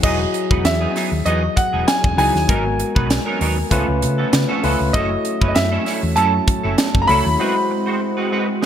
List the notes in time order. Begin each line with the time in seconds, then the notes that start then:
0.03 E1 F#3 B3 D#4 E4 F#4 G#4 D#5, kick, crash
0.20 muted clean electric guitar stroke
0.34 muted clean electric guitar stroke, closed hi-hat
0.50 E1 F#3 B3 D#4 B4, kick
0.64 E2 E5, muted clean electric guitar stroke, snare, closed hi-hat
0.81 F#3 B3 D#4 G#4
0.95 F#3 B3 D#4 G#4, snare, open hi-hat
1.12 D#2, muted clean electric guitar stroke
1.25 E2 F#3 B3 D#4 G#4 D#5, closed hi-hat
1.43 muted clean electric guitar stroke
1.56 F#5, muted clean electric guitar stroke, kick, closed hi-hat
1.73 E1 F#3 B3 D#4 G#4
1.87 G#5, muted clean electric guitar stroke, snare, closed hi-hat
2.04 E1, muted clean electric guitar stroke, kick
2.17 C#2 F#3 B3 D#4 E4 G#4 G#5, open hi-hat
2.34 D#2, muted clean electric guitar stroke, snare
2.48 G#1 F#3 G#3 B3 D#4 F#4 A#4, kick, closed hi-hat
2.65 muted clean electric guitar stroke
2.79 muted clean electric guitar stroke, closed hi-hat
2.95 B1 F#3 B3 D#4 B4, kick
3.09 muted clean electric guitar stroke, snare, closed hi-hat
3.26 F#3 B3 D#4 A#4
3.40 D#2 F#3 B3 D#4 A#4, open hi-hat
3.57 muted clean electric guitar stroke
3.71 C#2 F3 A3 B3 C#4 F4 A4 B4, kick, closed hi-hat
3.88 C#2, muted clean electric guitar stroke
4.02 C#3, muted clean electric guitar stroke, closed hi-hat
4.18 F3 B3 C#4 A4
4.33 C#3, muted clean electric guitar stroke, snare, closed hi-hat
4.49 F3 B3 C#4 A4
4.63 C#2 F3 A3 B3 C#4 F4 A4 B4, open hi-hat
4.80 C#2, muted clean electric guitar stroke
4.93 F#3 A3 C#4 E4 F#4 A4 D#5, kick, closed hi-hat
5.10 muted clean electric guitar stroke
5.24 muted clean electric guitar stroke, closed hi-hat
5.41 F#1 A3 C#4 E4 B4, kick
5.48 D#5
5.55 F#2 E5, muted clean electric guitar stroke, snare, closed hi-hat
5.71 A3 C#4 E4 A4
5.85 A3 C#4 E4 A4, snare, open hi-hat
6.02 E2, muted clean electric guitar stroke
6.16 F#2 A3 C#4 E4 A4 A5, closed hi-hat
6.33 muted clean electric guitar stroke
6.47 muted clean electric guitar stroke, kick, closed hi-hat
6.63 F#1 A3 C#4 E4 A4
6.78 muted clean electric guitar stroke, snare, closed hi-hat
6.95 F#1, muted clean electric guitar stroke, kick
7.02 A#5
7.07 C#2 A3 C#4 E4 F#4 A4 C#5 B5, open hi-hat
7.25 D#2, muted clean electric guitar stroke
7.39 G#3 C4 E4 F#4 B4 C5
7.56 muted clean electric guitar stroke
7.70 muted clean electric guitar stroke
7.86 G#3 C4 F#4 C5
8.00 muted clean electric guitar stroke
8.17 G#3 C4 F#4 B4
8.31 G#3 C4 F#4 B4
8.48 muted clean electric guitar stroke
8.62 G#3 C4, snare